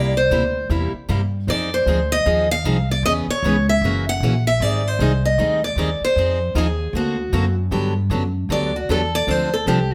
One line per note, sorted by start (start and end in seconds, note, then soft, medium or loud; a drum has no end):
0.00 0.30 C2 medium
0.00 0.13 C3 medium
0.00 0.13 G3 medium
0.00 0.13 A#3 medium
0.00 0.13 E4 medium
0.00 0.14 G4 medium
0.00 0.18 D5 loud
0.17 0.67 C5 medium
0.30 0.69 D2 medium
0.30 0.42 C3 medium
0.30 0.43 G3 medium
0.30 0.43 A#3 medium
0.30 0.43 E4 medium
0.30 0.43 G4 medium
0.70 0.92 E2 medium
0.70 0.91 C3 medium
0.70 0.91 G3 medium
0.70 0.91 A#3 medium
0.70 0.92 E4 medium
0.70 0.92 G4 medium
0.93 muted upright bass stroke soft
1.09 1.47 G2 medium
1.09 1.20 C3 medium
1.09 1.20 G3 medium
1.09 1.20 A#3 medium
1.09 1.20 E4 medium
1.09 1.21 G4 medium
1.47 1.85 F2 medium
1.47 1.69 F3 medium
1.47 1.69 C4 medium
1.47 1.69 D#4 medium
1.47 1.69 G#4 medium
1.47 1.74 D5 loud
1.74 2.13 C5 medium
1.86 2.24 D2 medium
1.86 1.98 F3 medium
1.86 1.99 C4 medium
1.86 1.99 D#4 medium
1.86 1.99 G#4 medium
2.12 2.48 D#5 loud
2.26 2.64 D#2 medium
2.26 2.47 F3 medium
2.26 2.47 C4 medium
2.26 2.47 D#4 medium
2.26 2.47 G#4 medium
2.51 2.91 F5 loud
2.64 3.02 C2 medium
2.64 2.76 F3 medium
2.64 2.76 C4 medium
2.64 2.77 D#4 medium
2.64 2.77 G#4 medium
2.91 3.04 D5 medium
3.03 3.26 E2 medium
3.03 3.26 C#3 medium
3.03 3.26 E3 medium
3.03 3.26 B3 medium
3.03 3.26 C#4 medium
3.03 3.26 G#4 medium
3.03 3.12 D#5 loud
3.27 3.66 C#5 medium
3.27 muted upright bass stroke soft
3.43 3.81 C#2 medium
3.43 3.55 C#3 medium
3.43 3.55 E3 medium
3.43 3.55 B3 medium
3.43 3.55 C#4 medium
3.43 3.55 G#4 medium
3.69 4.05 E5 loud
3.81 4.20 F#1 medium
3.81 4.04 C#3 medium
3.81 4.04 E3 medium
3.81 4.04 A#3 medium
3.81 4.04 C#4 medium
3.81 4.05 F#4 medium
4.09 4.44 F#5 loud
4.20 4.59 A#1 medium
4.20 4.33 C#3 medium
4.20 4.33 E3 medium
4.20 4.33 A#3 medium
4.20 4.33 C#4 medium
4.20 4.34 F#4 loud
4.47 4.62 E5 loud
4.60 4.98 G#1 medium
4.60 4.82 D#3 medium
4.60 4.82 G3 medium
4.60 4.82 C4 medium
4.60 4.82 D#4 medium
4.60 4.82 G#4 medium
4.60 4.87 D5 loud
4.87 5.25 C5 medium
4.99 5.37 C2 medium
4.99 5.11 D#3 medium
4.99 5.11 G3 medium
4.99 5.11 C4 medium
4.99 5.11 D#4 medium
4.99 5.11 G#4 medium
5.25 5.64 D#5 medium
5.38 5.75 D2 medium
5.38 5.59 D#3 medium
5.38 5.59 G3 medium
5.38 5.60 C4 medium
5.38 5.60 D#4 medium
5.38 5.60 G#4 medium
5.64 6.03 D5 medium
5.76 5.99 D#2 medium
5.76 5.88 D#3 medium
5.76 5.88 G3 medium
5.76 5.89 C4 medium
5.76 5.89 D#4 medium
5.76 5.89 G#4 medium
6.01 6.53 C5 medium
6.01 muted upright bass stroke soft
6.16 6.54 F2 medium
6.16 6.38 F3 medium
6.16 6.38 C4 medium
6.16 6.38 D#4 medium
6.16 6.38 G#4 medium
6.55 6.92 D#2 medium
6.55 6.66 F3 medium
6.55 6.66 C4 medium
6.55 6.67 D#4 medium
6.55 6.67 G#4 medium
6.55 6.96 G#4 medium
6.93 7.31 D2 medium
6.93 7.15 D3 medium
6.93 7.16 A#3 medium
6.93 7.16 C4 medium
6.93 7.16 F#4 medium
6.93 7.54 F#4 medium
6.93 7.16 C5 medium
7.33 7.70 F#2 medium
7.33 7.44 D3 medium
7.33 7.44 A#3 medium
7.33 7.44 C4 medium
7.33 7.44 F#4 medium
7.33 7.44 C5 medium
7.71 8.09 G2 medium
7.71 7.93 D3 medium
7.71 7.93 F#3 medium
7.71 7.93 B3 medium
7.71 7.93 D4 medium
7.71 7.93 G4 medium
8.10 8.48 F#2 medium
8.10 8.22 D3 medium
8.10 8.22 F#3 medium
8.10 8.22 B3 medium
8.10 8.23 D4 medium
8.10 8.23 G4 medium
8.49 8.87 D2 medium
8.49 8.71 D3 medium
8.49 8.71 F#3 medium
8.49 8.71 B3 medium
8.49 8.71 D4 medium
8.49 8.72 G4 medium
8.49 8.74 D5 medium
8.76 8.90 F#4 soft
8.89 9.27 E2 medium
8.89 9.00 D3 medium
8.89 9.01 F#3 medium
8.89 9.00 B3 medium
8.89 9.01 D4 medium
8.89 9.01 G4 medium
8.89 9.13 A4 medium
9.15 9.31 D5 loud
9.27 9.65 D2 medium
9.27 9.49 D3 medium
9.27 9.49 F3 medium
9.27 9.49 C4 medium
9.27 9.49 D4 medium
9.27 9.49 A4 medium
9.27 9.53 C5 medium
9.54 9.67 A4 medium
9.66 9.94 C2 medium
9.66 9.78 D3 medium
9.66 9.78 F3 medium
9.66 9.78 C4 medium
9.66 9.79 D4 medium
9.66 9.92 G4 medium
9.66 9.79 A4 medium